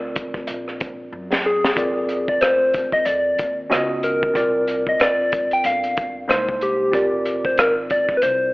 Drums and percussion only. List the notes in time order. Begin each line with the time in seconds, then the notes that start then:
0.16 kick, closed hi-hat
0.34 kick
0.47 closed hi-hat
0.68 cross-stick
0.80 kick, closed hi-hat
1.33 snare
1.65 snare
1.77 kick, closed hi-hat
2.09 closed hi-hat
2.28 kick
2.41 cross-stick, closed hi-hat
2.74 kick, closed hi-hat
2.92 kick
3.05 closed hi-hat
3.38 kick, closed hi-hat
3.71 cross-stick, closed hi-hat
4.03 closed hi-hat
4.23 kick
4.35 kick, closed hi-hat
4.67 closed hi-hat
4.87 kick
5.00 cross-stick, closed hi-hat
5.32 kick, closed hi-hat
5.51 closed hi-hat
5.64 closed hi-hat
5.83 closed hi-hat
5.97 kick, closed hi-hat
6.30 cross-stick, closed hi-hat
6.49 kick
6.61 closed hi-hat
6.93 kick, closed hi-hat
7.25 closed hi-hat
7.45 kick
7.57 cross-stick, closed hi-hat
7.90 kick, closed hi-hat
8.09 kick
8.22 closed hi-hat